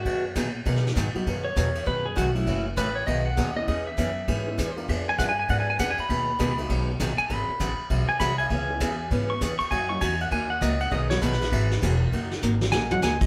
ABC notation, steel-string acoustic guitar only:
X:1
M:4/4
L:1/8
Q:"Swing" 1/4=199
K:B
V:1 name="Steel-string acoustic guitar"
[B,,D,F,B,DG] z [B,,D,F,B,DG] z [B,,D,F,B,DG] z [B,,D,F,B,DG] z | [B,,D,F,B,DG] z [B,,D,F,B,DG] z [B,,D,F,B,DG] z [B,,D,F,B,DG] z | [C,E,=A,CF] z [C,E,A,CF] z [B,,D,F,B,DG] z [B,,D,F,B,DG] z | [E,B,CG] z [E,B,CG] z [E,B,CG] z [E,B,CG] z |
[=F,_C=D_A] z [F,CDA] z [F,CDA] z [F,CDA] z | [B,,D,F,B,DG] z [B,,D,F,B,DG] z [B,,D,F,B,DG] z [B,,D,F,B,DG] z | [E,F,^B,FG] z [E,F,B,FG] z [E,F,B,FG] z [E,F,B,FG] z | [C,E,B,CG] z [C,E,B,CG] z [C,E,B,CG] z [C,E,B,CG] z |
[F,A,DF] z [F,A,DF] z [F,A,DF] z [F,A,DF] z | [B,,D,F,B,DG] z [B,,D,F,B,DG] z [E,F,^B,FG] z [E,F,B,FG] z | [F,A,DF] z [F,A,DF] z [F,A,DF] z [F,A,DF] z |]